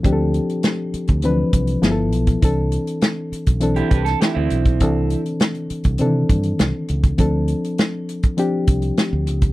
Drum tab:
HH |x-xxx-xxx-xxx-xx|x-xxx-xxxxxxx-xx|x-xxxxxxx-xxx-xx|x-xxx-xxx-xxx-xx|
SD |----o-------o---|----o------oo---|----o-------o---|----o-------o---|
BD |o------o--o----o|o------o--o----o|o------o--o----o|o------o--o----o|